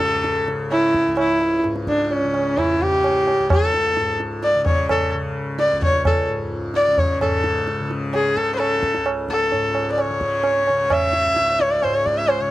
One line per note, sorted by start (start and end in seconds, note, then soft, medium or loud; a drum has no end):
0.00 1.07 C#2 medium
0.00 1.64 G#2 medium
0.00 0.47 C#3 medium
0.00 0.44 A4 medium
0.00 tabla te medium
0.24 tabla te medium
0.47 2.24 C#3 soft
0.47 tabla te medium
0.71 1.14 E4 medium
0.71 tabla na medium
0.94 tabla ke medium
1.07 3.39 C#2 medium
1.17 1.61 E4 medium
1.17 tabla na medium
1.41 tabla te medium
1.64 3.97 G#2 medium
1.64 tabla te medium
1.76 tabla te medium
1.87 2.04 D4 medium
1.87 tabla ke medium
1.99 tabla te medium
2.04 2.14 D4 medium
2.11 2.59 C#4 medium
2.11 tabla tin medium
2.24 2.81 C#3 soft
2.34 tabla na medium
2.58 2.83 E4 medium
2.58 tabla na medium
2.58 tabla ge medium
2.81 4.55 C#3 medium
2.81 3.51 G4 medium
2.81 tabla ge medium
3.04 tabla na medium
3.27 tabla na medium
3.39 5.72 C#2 medium
3.50 4.17 A4 medium
3.50 tabla na loud
3.50 tabla ge medium
3.74 tabla te medium
3.97 6.28 G#2 medium
3.97 tabla te medium
4.20 tabla te medium
4.43 4.65 D5 medium
4.43 tabla te medium
4.55 5.14 C#3 medium
4.66 4.88 C#5 medium
4.66 tabla tin medium
4.66 tabla ge medium
4.89 5.12 A4 medium
4.89 tabla na medium
4.89 tabla ge medium
5.14 6.87 C#3 medium
5.59 5.81 D5 medium
5.59 tabla te medium
5.72 8.96 C#2 medium
5.82 6.05 C#5 loud
5.82 tabla tin medium
5.82 tabla ge medium
6.05 6.28 A4 medium
6.05 tabla na medium
6.05 tabla ge medium
6.29 7.22 G#2 medium
6.74 7.00 D5 loud
6.74 tabla te medium
6.87 7.81 C#3 medium
6.98 7.21 C#5 medium
6.98 tabla tin medium
6.98 tabla ge medium
7.21 9.53 G#2 medium
7.21 7.87 A4 medium
7.21 tabla na loud
7.21 tabla ge medium
7.44 tabla te medium
7.67 tabla te medium
7.81 8.37 C#3 medium
7.91 tabla te medium
8.14 8.38 G#4 medium
8.14 tabla na medium
8.37 10.10 C#3 medium
8.37 8.54 A4 medium
8.37 tabla ke medium
8.55 9.06 A4 medium
8.55 8.60 C5 medium
8.60 tabla na medium
8.83 tabla ke medium
8.94 11.25 C#2 medium
8.94 tabla te medium
9.06 tabla na medium
9.29 9.88 A4 medium
9.29 tabla ke medium
9.52 11.84 G#2 medium
9.52 tabla tin medium
9.75 tabla na medium
9.92 10.02 D5 medium
9.98 10.94 C#5 medium
9.98 tabla na medium
10.10 10.69 C#3 medium
10.21 tabla ke medium
10.44 tabla na medium
10.67 12.40 C#3 medium
10.67 tabla na medium
10.90 11.62 E5 loud
10.90 tabla na loud
10.90 tabla ge medium
11.13 tabla te medium
11.26 12.51 C#2 medium
11.37 tabla te medium
11.60 11.72 C#5 medium
11.60 tabla te medium
11.71 11.84 D5 medium
11.83 12.51 G#2 medium
11.83 11.96 C5 medium
11.83 tabla na medium
11.95 12.07 C#5 medium
12.06 12.19 D5 medium
12.06 tabla ke medium
12.17 12.30 E5 medium
12.28 12.42 C5 medium
12.28 tabla na medium
12.40 12.51 C#3 medium
12.40 12.51 C#5 medium